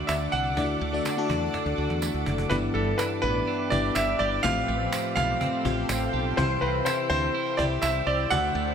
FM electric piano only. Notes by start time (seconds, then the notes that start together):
Already playing: D3 A3 D4 F#4 D5
0.57 D3 A3 D4 E4 D5
0.64 F#4
0.93 A3 D4 F#4 D5
1.17 A3 D4 F#4 A4
2.50 G2 B3 D4 E4 G4 D5
3.71 B3 D4 E4 G4 D5
4.44 A2 A3 C4 F4 G4 C5
5.65 A3 C4 F4 G4 C5
6.37 C3 E4 G4 C5
7.59 E4 G4 C5
8.31 D3 F#4 A4 D5